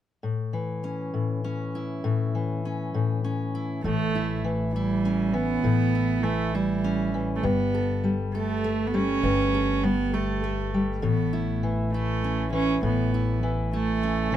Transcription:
0.23 A2
0.53 E3
0.84 C#4
1.14 A2
1.44 C#4
1.75 E4
2.04 A2
2.35 E3
2.65 C#4
2.94 A2
3.24 C#4
3.55 E4
3.84 A1 A2 A3
4.15 E4
4.44 E3
4.74 G3 E4
5.05 C#4
5.34 E3 B3
5.64 A1 A2
5.95 E4
6.23 E3 A3
6.55 G3 E4
6.84 C#4
7.14 E3
7.36 A3
7.43 G1 G2 B3
7.74 A4
8.04 G3
8.35 A3 A4
8.64 A3
8.87 B3
8.94 G3 C#4
9.23 G1 G2
9.55 A4
9.83 G3 B3
10.14 A3 A4
10.44 A3
10.74 G3
11.02 A1 A2 B3
11.33 E4
11.63 E3
11.93 A3 E4
12.24 C#4
12.53 E3 C#4
12.83 A1 A2 B3
13.14 E4
13.43 E3
13.73 A3 E4
14.03 C#4
14.32 E3

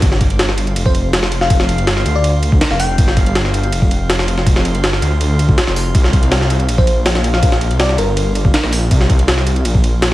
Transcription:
0.02 G1 F4 F5, kick, ride
0.12 snare
0.21 kick, ride
0.30 ride
0.39 snare, ride
0.49 snare
0.58 ride
0.67 ride
0.76 F1, ride
0.86 C5, kick
0.95 ride
1.13 snare, ride
1.23 snare
1.32 ride
1.41 F5, snare
1.50 kick, ride
1.60 snare
1.69 ride
1.78 G1, ride
1.87 snare, ride
1.97 snare
2.06 D2, ride
2.15 D5
2.24 ride
2.43 ride
2.52 kick
2.61 snare, ride
2.71 F1 F5, snare
2.80 G5, open hi-hat
2.98 G1, kick, ride
3.08 snare
3.17 kick, ride
3.26 ride
3.35 snare, ride
3.45 snare
3.54 ride
3.63 ride
3.72 F1, ride
3.82 kick
3.91 ride
4.10 snare, ride
4.19 snare
4.28 ride
4.38 snare
4.47 kick, ride
4.56 snare
4.65 ride
4.75 G1, ride
4.84 snare, ride
4.93 snare
5.02 D2, ride
5.21 ride
5.39 ride
5.49 kick
5.58 snare, ride
5.67 F1, snare
5.76 open hi-hat
5.95 C2, kick, ride
6.04 snare
6.13 kick, ride
6.23 ride
6.32 snare, ride
6.41 snare
6.50 ride
6.60 ride
6.69 A#1, ride
6.78 C5, kick
6.87 ride
7.06 snare, ride
7.15 snare
7.24 ride
7.34 F5, snare
7.43 kick, ride
7.52 snare
7.61 ride
7.71 C2, ride
7.80 D5, snare, ride
7.89 snare
7.98 G1 A#4, ride
8.17 ride
8.35 ride
8.45 kick
8.54 snare, ride
8.63 A#1, snare
8.73 open hi-hat
8.91 C2, kick, ride
9.01 snare
9.10 kick, ride
9.19 ride
9.28 snare, ride
9.38 snare
9.47 ride
9.56 ride
9.65 A#1, ride
9.75 kick
9.84 ride
10.02 snare, ride

